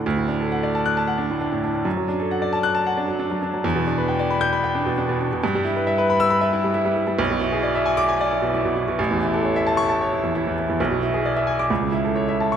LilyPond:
\new Staff \with { instrumentName = "Grand piano" } { \time 4/4 \key d \major \tempo 4 = 134 << { r4. r16 fis'''8 r4. r16 | r4. r16 fis'''8 r4. r16 | r4. r16 g'''8 r4. r16 | r4. r16 e'''8 r4. r16 |
\key a \major r4. r16 d'''8 r4. r16 | r4. r16 cis'''8 r4. r16 | r4. r16 d'''16 r4. r16 cis'''16 | } \\ { d,16 a,16 d'16 a'16 fis''16 d''16 a''8 a''16 fis''16 d'16 a,16 d'16 a,16 d'16 a,16 | fis,16 fis16 d'16 a'16 fis''16 d''16 a''8 a''16 fis''16 d'16 fis16 d'16 fis16 d'16 fis16 | e,16 b,16 d'16 b'16 g''16 d''16 b''8 b''16 g''16 d'16 b,16 d'16 b,16 d'16 b,16 | g,16 g16 e'16 b'16 e''16 b'16 b''8 b''16 e''16 e'16 g16 e'16 g16 e'16 g16 |
b,,16 b,16 e'16 gis'16 d''16 e''16 gis''8 gis''16 d''16 e'16 b,16 e'16 b,16 e'16 b,16 | a,,16 e,16 e'16 a'16 cis''16 e''16 a''8 a''16 cis''16 e'16 e,16 e'16 e,16 e'16 e,16 | b,,16 b,16 e'16 gis'16 d''16 e''16 gis''8 cis,16 cis16 e'16 a'16 cis''16 e''16 a''8 | } >> }